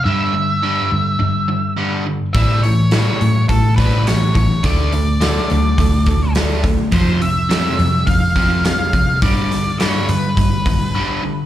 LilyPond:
<<
  \new Staff \with { instrumentName = "Lead electric guitar" } { \time 4/4 \key g \lydian \tempo 4 = 105 e''2. r4 | e''8 cis''4. a'8 b'8 cis''8 cis''8 | d''2. r4 | c''8 e''4. f''4 f''4 |
d''4 cis''8 b'2 r8 | }
  \new Staff \with { instrumentName = "Overdriven electric guitar" } { \clef bass \time 4/4 \key g \lydian <g, d g>8 <g, d>8 <g, d g>8 <g, d>8 <g, d>8 <g, d>8 <g, d g>8 <g, d>8 | <a, e g>8 <a, e>8 <a, e g>8 <a, e>8 <a, e>8 <a, e g>8 <a, e>8 <a, e>8 | <d a d'>8 <d a>8 <d a d'>8 <d a>8 <d a>8 <d a>8 <d a d'>8 <d a>8 | <f, c f>8 <f, c>8 <f, c f>8 <f, c>8 <f, c>8 <f, c f>8 <f, c>8 <f, c>8 |
<g, d g>8 <g, d>8 <g, d g>8 <g, d>8 <g, d>8 <g, d>8 <g, d g>8 <g, d>8 | }
  \new Staff \with { instrumentName = "Fingered electric bass" } { \clef bass \time 4/4 \key g \lydian g,4. g,8 g,2 | a,4. a,8 a,2 | d,4. d,8 d,2 | f,4. f,8 f,2 |
g,4. g,8 g,4 r4 | }
  \new DrumStaff \with { instrumentName = "Drums" } \drummode { \time 4/4 r4 r4 r4 r4 | <hho bd>8 hho8 <hho sn>8 hho8 <hho bd>8 <hho bd>8 <hho sn>8 <hho bd>8 | <hho bd>8 hho8 <hho sn>8 hho8 <hho bd>8 <hho bd>8 <hho sn>8 <hho bd>8 | <hho bd>8 hho8 <hho sn>8 hho8 <hho bd>8 <hho bd>8 <hho sn>8 <hho bd>8 |
<hho bd>8 <hho sn>8 <hho sn>8 hho8 <hho bd>8 <hho bd>8 r4 | }
>>